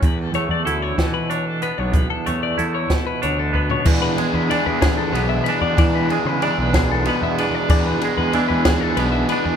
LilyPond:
<<
  \new Staff \with { instrumentName = "Clean electric guitar" } { \time 6/8 \key e \mixolydian \tempo 4. = 63 b'16 a'16 cis''16 d''16 a'16 cis''16 a'16 b'16 cis''16 a'16 b'16 cis''16 | b'16 a'16 cis''16 d''16 a'16 cis''16 a'16 b'16 cis''16 a'16 b'16 cis''16 | d''16 b'16 gis'16 b'16 d''16 b'16 gis'16 a'16 b'16 e''16 b'16 d''16 | d''16 b'16 gis'16 b'16 d''16 b'16 gis'16 a'16 b'16 e''16 b'16 d''16 |
d''16 b'16 gis'16 b'16 d''16 b'16 gis'16 a'16 b'16 e''16 b'16 d''16 | }
  \new Staff \with { instrumentName = "Overdriven electric guitar" } { \time 6/8 \key e \mixolydian r2. | r2. | <e b d' gis'>8 <e b d' gis'>8 <e b d' gis'>8 <e b d' gis'>8 <e b d' gis'>8 <e b d' gis'>8 | <e b d' gis'>8 <e b d' gis'>8 <e b d' gis'>8 <e b d' gis'>8 <e b d' gis'>8 <e b d' gis'>8 |
<e b d' gis'>8 <e b d' gis'>8 <e b d' gis'>8 <e b d' gis'>8 <e b d' gis'>8 <e b d' gis'>8 | }
  \new Staff \with { instrumentName = "Clean electric guitar" } { \time 6/8 \key e \mixolydian << { r8 a8 e'4 d'8 b8 | r8 a8 e'4 d'8 b8 | r8 gis8 d'4 b8 d'8~ | d'8 gis8 d'4 b8 d'8~ |
d'8 gis8 d'4 b8 d'8 | } \\ { e,4. b,4. | e,4. b,4. | e,4 e4 b,4 | e,4 e4 b,4 |
e,4 e4 b,4 | } >> }
  \new Staff \with { instrumentName = "Picked electric bass" } { \clef bass \time 6/8 \key e \mixolydian e,8 e,16 e,16 d,8 e4~ e16 b,,16~ | b,,16 r16 e,8 e,8 r8 d,4 | e,8 r16 e,16 r16 e,8. b,,8 r16 e,16 | e8. cis16 r16 b,,4 e,8 r16 |
e,8 r16 e,16 r16 e,8. b,,8 r16 e,16 | }
  \new DrumStaff \with { instrumentName = "Drums" } \drummode { \time 6/8 <hh bd>8 hh8 hh8 <hh bd sn>8 hh8 hh8 | <hh bd>8 hh8 hh8 <hh bd sn>8 hh8 bd16 tomfh16 | <cymc bd>8 cymr8 cymr8 <bd cymr sn>8 cymr8 cymr8 | <bd cymr>8 cymr8 cymr8 <bd cymr sn>8 cymr8 cymr8 |
<cymc bd>8 cymr8 cymr8 <bd cymr sn>8 cymr8 cymr8 | }
>>